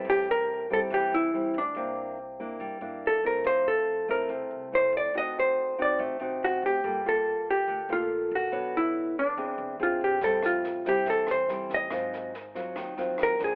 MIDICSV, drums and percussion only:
0, 0, Header, 1, 2, 480
1, 0, Start_track
1, 0, Tempo, 423430
1, 63, Time_signature, 4, 2, 24, 8
1, 15360, End_track
2, 0, Start_track
2, 0, Title_t, "Drums"
2, 11574, Note_on_c, 9, 38, 27
2, 11579, Note_on_c, 9, 36, 64
2, 11687, Note_off_c, 9, 38, 0
2, 11692, Note_off_c, 9, 36, 0
2, 11818, Note_on_c, 9, 37, 62
2, 11818, Note_on_c, 9, 38, 25
2, 11931, Note_off_c, 9, 37, 0
2, 11931, Note_off_c, 9, 38, 0
2, 12059, Note_on_c, 9, 38, 25
2, 12172, Note_off_c, 9, 38, 0
2, 12299, Note_on_c, 9, 38, 25
2, 12300, Note_on_c, 9, 36, 24
2, 12413, Note_off_c, 9, 38, 0
2, 12414, Note_off_c, 9, 36, 0
2, 12536, Note_on_c, 9, 38, 28
2, 12540, Note_on_c, 9, 36, 60
2, 12649, Note_off_c, 9, 38, 0
2, 12654, Note_off_c, 9, 36, 0
2, 12774, Note_on_c, 9, 37, 56
2, 12774, Note_on_c, 9, 38, 22
2, 12887, Note_off_c, 9, 37, 0
2, 12887, Note_off_c, 9, 38, 0
2, 13019, Note_on_c, 9, 38, 23
2, 13133, Note_off_c, 9, 38, 0
2, 13260, Note_on_c, 9, 38, 24
2, 13261, Note_on_c, 9, 36, 23
2, 13373, Note_off_c, 9, 38, 0
2, 13374, Note_off_c, 9, 36, 0
2, 13496, Note_on_c, 9, 37, 68
2, 13496, Note_on_c, 9, 38, 24
2, 13501, Note_on_c, 9, 36, 66
2, 13609, Note_off_c, 9, 37, 0
2, 13609, Note_off_c, 9, 38, 0
2, 13614, Note_off_c, 9, 36, 0
2, 13746, Note_on_c, 9, 38, 24
2, 13859, Note_off_c, 9, 38, 0
2, 13988, Note_on_c, 9, 38, 25
2, 14101, Note_off_c, 9, 38, 0
2, 14222, Note_on_c, 9, 36, 25
2, 14226, Note_on_c, 9, 38, 24
2, 14335, Note_off_c, 9, 36, 0
2, 14339, Note_off_c, 9, 38, 0
2, 14461, Note_on_c, 9, 36, 62
2, 14464, Note_on_c, 9, 37, 58
2, 14464, Note_on_c, 9, 38, 27
2, 14575, Note_off_c, 9, 36, 0
2, 14577, Note_off_c, 9, 37, 0
2, 14577, Note_off_c, 9, 38, 0
2, 14704, Note_on_c, 9, 38, 22
2, 14817, Note_off_c, 9, 38, 0
2, 14941, Note_on_c, 9, 37, 66
2, 14941, Note_on_c, 9, 38, 24
2, 15054, Note_off_c, 9, 37, 0
2, 15054, Note_off_c, 9, 38, 0
2, 15179, Note_on_c, 9, 36, 23
2, 15181, Note_on_c, 9, 38, 23
2, 15292, Note_off_c, 9, 36, 0
2, 15294, Note_off_c, 9, 38, 0
2, 15360, End_track
0, 0, End_of_file